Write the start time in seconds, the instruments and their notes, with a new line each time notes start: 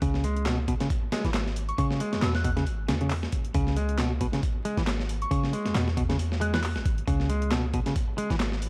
0.02 808-style bass C#2, clean electric guitar C#3, kick, closed hi-hat
0.14 snare
0.24 clean electric guitar G#3, closed hi-hat
0.37 closed hi-hat
0.46 clean electric guitar B2, snare, clap, closed hi-hat
0.68 clean electric guitar B2, kick, closed hi-hat
0.80 clean electric guitar C#3, snare, closed hi-hat
0.90 kick, closed hi-hat
1.12 clean electric guitar G#3, snare, closed hi-hat
1.24 808-style bass G#1, clean electric guitar E3, snare, closed hi-hat
1.34 snare, clap, closed hi-hat
1.46 snare
1.56 closed hi-hat
1.69 synth bell C#6, closed hi-hat
1.78 clean electric guitar C#3, synth bell C#6, kick, closed hi-hat
1.91 snare
2.00 clean electric guitar G#3, closed hi-hat
2.13 808-style bass E2, snare, closed hi-hat
2.22 808-style bass E2, clean electric guitar B2, synth bell E6, snare, clap, closed hi-hat
2.35 synth bell F#6, snare
2.44 clean electric guitar B2, synth bell F#6, kick, closed hi-hat
2.57 clean electric guitar C#3, snare, closed hi-hat
2.66 808-style bass G#1, closed hi-hat
2.88 808-style bass E2, clean electric guitar C#3, snare, closed hi-hat
3.01 clean electric guitar C#3, closed hi-hat
3.10 clap, closed hi-hat, open hi-hat
3.23 snare
3.32 kick, closed hi-hat
3.45 closed hi-hat
3.54 808-style bass C#2, clean electric guitar C#3, kick, closed hi-hat
3.67 snare
3.77 clean electric guitar G#3, closed hi-hat
3.89 closed hi-hat
3.98 clean electric guitar B2, snare, clap, closed hi-hat
4.21 clean electric guitar B2, kick, closed hi-hat
4.33 clean electric guitar C#3, snare, closed hi-hat
4.43 kick, closed hi-hat
4.65 clean electric guitar G#3, closed hi-hat
4.77 808-style bass G#1, clean electric guitar E3, snare, closed hi-hat
4.87 snare, clap, closed hi-hat
4.99 snare
5.09 closed hi-hat
5.22 synth bell C#6, closed hi-hat
5.31 clean electric guitar C#3, synth bell C#6, kick, closed hi-hat
5.44 snare
5.53 clean electric guitar G#3, closed hi-hat
5.66 808-style bass E2, snare, closed hi-hat
5.75 808-style bass E2, clean electric guitar B2, snare, clap, closed hi-hat
5.88 snare
5.97 clean electric guitar B2, kick, closed hi-hat
6.09 clean electric guitar C#3, snare, closed hi-hat
6.19 closed hi-hat
6.32 snare
6.41 clean electric guitar G#3, synth bell F#6, closed hi-hat
6.53 clean electric guitar E3, synth bell F#6, snare, closed hi-hat
6.63 clap, closed hi-hat, open hi-hat
6.76 808-style bass G#1, snare
6.85 808-style bass G#1, kick, closed hi-hat
6.98 closed hi-hat
7.07 808-style bass C#2, clean electric guitar C#3, kick, closed hi-hat
7.20 snare
7.29 clean electric guitar G#3, closed hi-hat
7.42 closed hi-hat
7.52 clean electric guitar B2, snare, clap, closed hi-hat
7.74 clean electric guitar B2, kick, closed hi-hat
7.86 clean electric guitar C#3, snare, closed hi-hat
7.96 kick, closed hi-hat
8.18 clean electric guitar G#3, closed hi-hat
8.30 808-style bass G#1, clean electric guitar E3, snare, closed hi-hat
8.40 snare, clap, closed hi-hat
8.52 snare
8.62 closed hi-hat